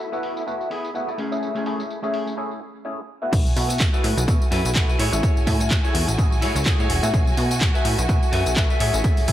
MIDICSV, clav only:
0, 0, Header, 1, 2, 480
1, 0, Start_track
1, 0, Tempo, 476190
1, 1434, Time_signature, 4, 2, 24, 8
1, 9399, End_track
2, 0, Start_track
2, 0, Title_t, "Clav"
2, 0, Program_c, 0, 7
2, 123, Note_on_c, 0, 57, 75
2, 125, Note_on_c, 0, 59, 70
2, 129, Note_on_c, 0, 64, 71
2, 132, Note_on_c, 0, 66, 84
2, 446, Note_off_c, 0, 57, 0
2, 447, Note_off_c, 0, 59, 0
2, 449, Note_off_c, 0, 64, 0
2, 451, Note_off_c, 0, 66, 0
2, 471, Note_on_c, 0, 57, 85
2, 473, Note_on_c, 0, 59, 71
2, 476, Note_on_c, 0, 64, 76
2, 478, Note_on_c, 0, 66, 90
2, 696, Note_off_c, 0, 57, 0
2, 697, Note_off_c, 0, 59, 0
2, 699, Note_off_c, 0, 64, 0
2, 700, Note_off_c, 0, 66, 0
2, 952, Note_on_c, 0, 57, 77
2, 954, Note_on_c, 0, 59, 71
2, 957, Note_on_c, 0, 64, 70
2, 960, Note_on_c, 0, 66, 84
2, 1103, Note_off_c, 0, 57, 0
2, 1104, Note_off_c, 0, 59, 0
2, 1106, Note_off_c, 0, 64, 0
2, 1107, Note_off_c, 0, 66, 0
2, 1324, Note_on_c, 0, 57, 78
2, 1327, Note_on_c, 0, 61, 68
2, 1329, Note_on_c, 0, 64, 69
2, 1331, Note_on_c, 0, 68, 84
2, 1646, Note_off_c, 0, 57, 0
2, 1648, Note_off_c, 0, 61, 0
2, 1649, Note_off_c, 0, 64, 0
2, 1650, Note_off_c, 0, 68, 0
2, 1672, Note_on_c, 0, 57, 84
2, 1674, Note_on_c, 0, 61, 76
2, 1677, Note_on_c, 0, 64, 76
2, 1680, Note_on_c, 0, 68, 94
2, 2015, Note_off_c, 0, 57, 0
2, 2015, Note_off_c, 0, 61, 0
2, 2017, Note_off_c, 0, 64, 0
2, 2018, Note_off_c, 0, 68, 0
2, 2044, Note_on_c, 0, 57, 80
2, 2046, Note_on_c, 0, 61, 74
2, 2050, Note_on_c, 0, 64, 73
2, 2052, Note_on_c, 0, 68, 87
2, 2366, Note_off_c, 0, 57, 0
2, 2368, Note_off_c, 0, 61, 0
2, 2369, Note_off_c, 0, 64, 0
2, 2370, Note_off_c, 0, 68, 0
2, 2388, Note_on_c, 0, 57, 85
2, 2390, Note_on_c, 0, 61, 73
2, 2393, Note_on_c, 0, 64, 75
2, 2396, Note_on_c, 0, 68, 94
2, 2615, Note_off_c, 0, 57, 0
2, 2616, Note_off_c, 0, 61, 0
2, 2618, Note_off_c, 0, 64, 0
2, 2619, Note_off_c, 0, 68, 0
2, 2870, Note_on_c, 0, 57, 78
2, 2873, Note_on_c, 0, 61, 72
2, 2876, Note_on_c, 0, 64, 72
2, 2879, Note_on_c, 0, 68, 86
2, 3022, Note_off_c, 0, 57, 0
2, 3024, Note_off_c, 0, 61, 0
2, 3025, Note_off_c, 0, 64, 0
2, 3027, Note_off_c, 0, 68, 0
2, 3244, Note_on_c, 0, 57, 79
2, 3247, Note_on_c, 0, 59, 72
2, 3250, Note_on_c, 0, 64, 68
2, 3252, Note_on_c, 0, 66, 86
2, 3567, Note_off_c, 0, 57, 0
2, 3568, Note_off_c, 0, 59, 0
2, 3570, Note_off_c, 0, 64, 0
2, 3571, Note_off_c, 0, 66, 0
2, 3589, Note_on_c, 0, 57, 92
2, 3592, Note_on_c, 0, 59, 81
2, 3595, Note_on_c, 0, 64, 80
2, 3598, Note_on_c, 0, 66, 97
2, 3933, Note_off_c, 0, 57, 0
2, 3935, Note_off_c, 0, 59, 0
2, 3936, Note_off_c, 0, 64, 0
2, 3938, Note_off_c, 0, 66, 0
2, 3964, Note_on_c, 0, 57, 80
2, 3966, Note_on_c, 0, 59, 76
2, 3969, Note_on_c, 0, 64, 78
2, 3972, Note_on_c, 0, 66, 89
2, 4287, Note_off_c, 0, 57, 0
2, 4288, Note_off_c, 0, 59, 0
2, 4289, Note_off_c, 0, 64, 0
2, 4291, Note_off_c, 0, 66, 0
2, 4311, Note_on_c, 0, 57, 86
2, 4314, Note_on_c, 0, 59, 81
2, 4317, Note_on_c, 0, 64, 79
2, 4320, Note_on_c, 0, 66, 98
2, 4537, Note_off_c, 0, 57, 0
2, 4538, Note_off_c, 0, 59, 0
2, 4539, Note_off_c, 0, 64, 0
2, 4541, Note_off_c, 0, 66, 0
2, 4791, Note_on_c, 0, 57, 87
2, 4793, Note_on_c, 0, 59, 79
2, 4796, Note_on_c, 0, 64, 81
2, 4799, Note_on_c, 0, 66, 93
2, 4943, Note_off_c, 0, 57, 0
2, 4944, Note_off_c, 0, 59, 0
2, 4945, Note_off_c, 0, 64, 0
2, 4947, Note_off_c, 0, 66, 0
2, 5166, Note_on_c, 0, 57, 81
2, 5168, Note_on_c, 0, 61, 73
2, 5171, Note_on_c, 0, 64, 78
2, 5174, Note_on_c, 0, 80, 89
2, 5487, Note_off_c, 0, 57, 0
2, 5488, Note_off_c, 0, 61, 0
2, 5490, Note_off_c, 0, 64, 0
2, 5492, Note_off_c, 0, 80, 0
2, 5510, Note_on_c, 0, 57, 93
2, 5513, Note_on_c, 0, 61, 80
2, 5514, Note_on_c, 0, 64, 82
2, 5517, Note_on_c, 0, 80, 99
2, 5853, Note_off_c, 0, 57, 0
2, 5855, Note_off_c, 0, 61, 0
2, 5856, Note_off_c, 0, 64, 0
2, 5857, Note_off_c, 0, 80, 0
2, 5882, Note_on_c, 0, 57, 86
2, 5886, Note_on_c, 0, 61, 79
2, 5888, Note_on_c, 0, 64, 79
2, 5891, Note_on_c, 0, 80, 95
2, 6206, Note_off_c, 0, 57, 0
2, 6208, Note_off_c, 0, 61, 0
2, 6208, Note_off_c, 0, 64, 0
2, 6210, Note_off_c, 0, 80, 0
2, 6228, Note_on_c, 0, 57, 86
2, 6231, Note_on_c, 0, 61, 79
2, 6234, Note_on_c, 0, 64, 80
2, 6237, Note_on_c, 0, 68, 100
2, 6455, Note_off_c, 0, 57, 0
2, 6456, Note_off_c, 0, 61, 0
2, 6458, Note_off_c, 0, 64, 0
2, 6459, Note_off_c, 0, 68, 0
2, 6709, Note_on_c, 0, 57, 85
2, 6712, Note_on_c, 0, 61, 76
2, 6715, Note_on_c, 0, 64, 78
2, 6718, Note_on_c, 0, 68, 94
2, 6862, Note_off_c, 0, 57, 0
2, 6863, Note_off_c, 0, 61, 0
2, 6865, Note_off_c, 0, 64, 0
2, 6866, Note_off_c, 0, 68, 0
2, 7082, Note_on_c, 0, 57, 85
2, 7086, Note_on_c, 0, 59, 76
2, 7088, Note_on_c, 0, 64, 76
2, 7091, Note_on_c, 0, 66, 90
2, 7406, Note_off_c, 0, 57, 0
2, 7408, Note_off_c, 0, 59, 0
2, 7409, Note_off_c, 0, 64, 0
2, 7410, Note_off_c, 0, 66, 0
2, 7429, Note_on_c, 0, 57, 89
2, 7431, Note_on_c, 0, 59, 84
2, 7434, Note_on_c, 0, 64, 81
2, 7436, Note_on_c, 0, 66, 95
2, 7773, Note_off_c, 0, 57, 0
2, 7774, Note_off_c, 0, 59, 0
2, 7776, Note_off_c, 0, 64, 0
2, 7777, Note_off_c, 0, 66, 0
2, 7803, Note_on_c, 0, 57, 85
2, 7805, Note_on_c, 0, 59, 76
2, 7808, Note_on_c, 0, 64, 80
2, 7811, Note_on_c, 0, 66, 90
2, 8126, Note_off_c, 0, 57, 0
2, 8127, Note_off_c, 0, 59, 0
2, 8129, Note_off_c, 0, 64, 0
2, 8130, Note_off_c, 0, 66, 0
2, 8148, Note_on_c, 0, 57, 87
2, 8150, Note_on_c, 0, 59, 84
2, 8154, Note_on_c, 0, 64, 78
2, 8156, Note_on_c, 0, 66, 98
2, 8375, Note_off_c, 0, 57, 0
2, 8376, Note_off_c, 0, 59, 0
2, 8378, Note_off_c, 0, 64, 0
2, 8379, Note_off_c, 0, 66, 0
2, 8628, Note_on_c, 0, 57, 82
2, 8631, Note_on_c, 0, 59, 79
2, 8633, Note_on_c, 0, 64, 77
2, 8636, Note_on_c, 0, 66, 94
2, 8781, Note_off_c, 0, 57, 0
2, 8783, Note_off_c, 0, 59, 0
2, 8784, Note_off_c, 0, 64, 0
2, 8785, Note_off_c, 0, 66, 0
2, 9001, Note_on_c, 0, 57, 80
2, 9003, Note_on_c, 0, 61, 76
2, 9006, Note_on_c, 0, 64, 74
2, 9009, Note_on_c, 0, 80, 90
2, 9325, Note_off_c, 0, 57, 0
2, 9326, Note_off_c, 0, 61, 0
2, 9328, Note_off_c, 0, 64, 0
2, 9329, Note_off_c, 0, 80, 0
2, 9349, Note_on_c, 0, 57, 88
2, 9352, Note_on_c, 0, 61, 81
2, 9355, Note_on_c, 0, 64, 82
2, 9358, Note_on_c, 0, 80, 98
2, 9399, Note_off_c, 0, 57, 0
2, 9399, Note_off_c, 0, 61, 0
2, 9399, Note_off_c, 0, 64, 0
2, 9399, Note_off_c, 0, 80, 0
2, 9399, End_track
0, 0, End_of_file